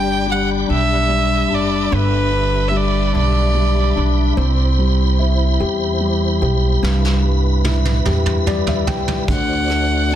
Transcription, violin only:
Already playing: G5
0.31 F#5
0.72 E5
1.54 D5
1.95 B4
2.68 E5
2.76 D5
3.17 D5
9.32 F#5

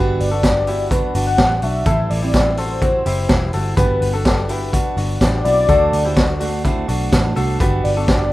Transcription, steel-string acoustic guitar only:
Already playing: G3 B3 D4 F#4 B4
0.31 D4 F#4 B4
0.67 B3 D4 F#4 B4
0.91 B3 D4 F#4 B4
1.14 B3 D4 F#4 B4
1.62 B3 D4 F#4 B4
1.86 A2 E3 G3 C4 E4 C5
2.22 G3 C4 E4 C5
2.57 G3 C4 E4 C5
2.81 G3 C4 E4 C5
3.06 G3 C4 E4 C5
3.54 G3 C4 E4 C5
3.77 G3 B3 D4 F#4 B4
4.13 D4 F#4 B4
4.48 B3 D4 F#4 B4
4.73 B3 D4 F#4 B4
4.97 B3 D4 F#4 B4
5.45 B3 D4 F#4 B4
5.68 D3 F#3 A3 D4 F#4 C5
6.05 A3 D4 F#4 C5
6.40 A3 D4 F#4 C5
6.65 A3 D4 F#4 C5
6.88 A3 D4 F#4 C5
7.35 A3 D4 F#4 C5
7.60 G3 B3 D4 F#4
7.96 B3 D4 F#4

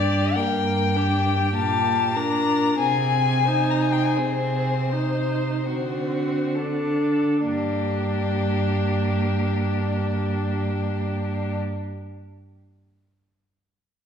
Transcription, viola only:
Already playing: D4
0.36 A#3
0.96 D4
1.55 A#3
2.16 D4
2.80 C4
3.48 D#4
4.19 C4
4.93 D#4
5.72 C4
6.59 D4
7.49 A#3

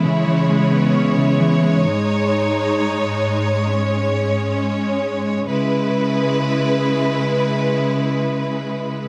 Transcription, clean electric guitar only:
Already playing: E3 G#3 C#4
0.04 C#3
0.26 E3
0.49 G#3
0.71 B3
0.94 C#4
1.17 C#3
1.39 E3
1.63 G#3

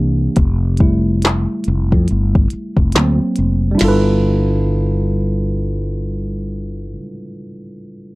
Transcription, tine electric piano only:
Already playing: E3 A#3 D4 G4
0.80 G3 A3 E4
2.95 F#3 A#3 C4
3.71 G3 D4
3.78 E4 F4
3.85 A4 B4

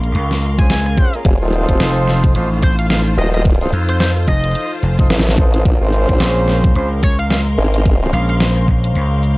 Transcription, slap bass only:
Already playing: A#1
0.15 C#2
1.80 F1
2.35 A1
3.73 F2
4.28 F1
4.83 F1
6.20 A#1
6.75 C#2
8.13 A#1
8.68 A#1
8.96 C#2

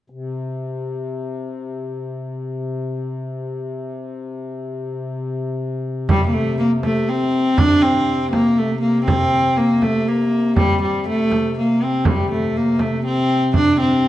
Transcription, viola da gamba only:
6.09 G3
6.27 A#3
6.34 A3
6.59 A#3
6.85 A3
7.09 C4
7.58 D4
7.82 C4
8.32 A#3
8.58 A3
8.81 A#3
9.05 C4
9.57 A#3
9.83 A3
10.08 A#3
10.57 G3
10.82 G3
11.08 A3
11.59 A#3
11.83 C4
12.07 G3
12.31 A3
12.57 A#3
12.81 A3
13.05 C4
13.56 D4
13.80 C4

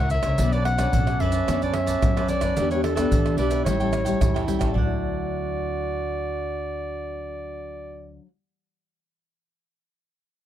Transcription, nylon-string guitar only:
Already playing: C#3 E4 A#4 C#5
0.24 D4 A4 C#5
0.40 B3
0.78 D4 A4 C#5
0.94 F#3
1.08 A4 C#5
1.48 B3 D4 A4 C#5
1.76 A4 C#5
2.04 F#3
2.18 A4 C#5
2.59 E3 B3 D4 G4
2.74 B3 D4 G4
2.99 B3 D4 G4
3.14 B2
3.40 B3 D4 G4
3.66 A2 G3 C#4 E4
3.81 G3 C#4 E4
4.06 G3 C#4 E4
4.20 E3
4.47 G3 C#4 E4
4.70 D3
4.76 F#3
4.85 E4

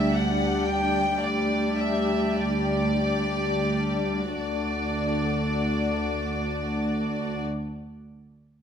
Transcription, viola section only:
Already playing: G3 D4
1.18 G3 D4
3.02 G3 D4
4.36 A3 D4

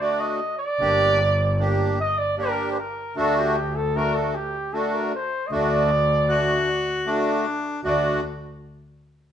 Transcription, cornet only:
0.00 D5
0.20 D#5
0.59 D5
2.00 D#5
2.18 D5
2.38 A#4
2.71 C5
2.78 A#4
3.17 A4
3.38 G4
3.76 A4
3.96 A#4
4.15 A4
4.35 G4
4.74 A4
4.94 A#4
5.15 C5
5.47 D#5
5.53 D5
7.86 D5

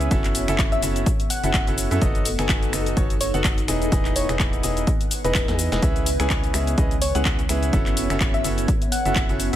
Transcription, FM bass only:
0.11 F#1
0.48 F#1
0.83 F#1
1.44 F#1
1.67 F#1
1.91 F#2
2.02 F#1
2.39 F#1
2.73 F#1
2.97 F#1
3.34 F#1
3.68 E1
3.92 E1
4.29 E1
4.63 E1
5.24 E1
5.48 E2
5.72 E1
5.83 C#2
6.20 C#2
6.54 C#2
6.78 C#2
7.15 C#2
7.49 C#2
7.73 F#1
8.10 F#1
8.44 F#1
9.06 F#1
9.29 F#1

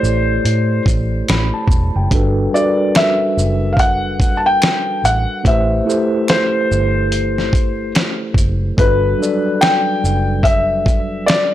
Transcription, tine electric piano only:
Already playing: A3 E4 G4 A4 C5 C#5 D5
1.29 B5
1.54 A5
1.96 G5
2.11 G3 D4 F#4 A4
2.15 B4
2.53 G3 D4 F#4 A4
2.57 A#4
2.64 B4
5.44 A3 E4 G4 B4
5.48 C5
5.85 A3 E4 G4 A4 C5
8.77 G3 D4 F#4 A4
8.81 B4
9.18 F#3 G3 D4 A4
9.23 D5

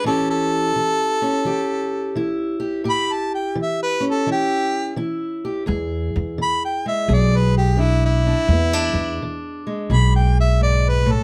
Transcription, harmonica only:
0.06 A4
0.30 A4
2.90 B5
3.13 A5
3.35 G5
3.62 E5
3.83 B4
4.10 A4
4.32 G4
6.42 B5
6.65 G5
6.88 E5
7.14 D5
7.37 B4
7.58 G4
7.81 E4
8.06 E4
9.93 B5
10.16 G5
10.40 E5
10.63 D5
10.89 B4
11.12 A4

